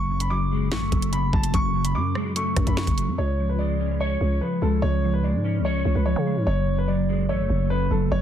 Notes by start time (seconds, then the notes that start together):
Already playing: F#1 F#2 C#6
0.10 C#3
0.20 B5, closed hi-hat
0.30 F#3 D6
0.52 G#3
0.71 A1 A3 C#6, snare
0.82 F#1
0.92 F#1 F#2, kick, closed hi-hat
1.02 closed hi-hat
1.13 C#3 B5, closed hi-hat
1.33 F#1 F#3 A5, kick
1.43 closed hi-hat
1.54 F#1 F#2 C#6, kick, closed hi-hat
1.74 C#3
1.85 B5, closed hi-hat
1.94 F#2 F#3 D6
2.15 G#3, cross-stick
2.36 A3 C#6, closed hi-hat
2.56 F#2, kick, cross-stick, closed hi-hat
2.67 F#2 B5, kick, closed hi-hat
2.77 C#3 C#6, snare
2.87 F#1, kick, closed hi-hat
2.98 F#3, closed hi-hat
3.08 F#2
3.18 C#2 C#3 C#5
3.39 F3
3.49 B4
3.59 G#3 D5
3.80 C#4
4.00 C#5
4.21 C#2 C#3
4.41 F3 B4
4.62 C#2 G#3 A4
4.82 C#2 C#3 C#5
5.03 F3
5.13 B4
5.24 G#3 D5
5.34 G#2
5.44 C#4
5.60 C#2
5.65 C#5
5.85 C#2 C#3
5.95 C#2 B4
6.06 F3 C#5
6.16 C#3
6.26 G#3
6.37 G#2
6.47 F#1 F#2 C#5
6.67 C#3
6.78 B4
6.88 F#3 D5
7.09 G#3
7.29 A1 A3 C#5
7.39 F#1
7.49 F#1 F#2
7.70 C#3 B4
7.91 F#1 F#3 A4
8.11 F#1 F#2 C#5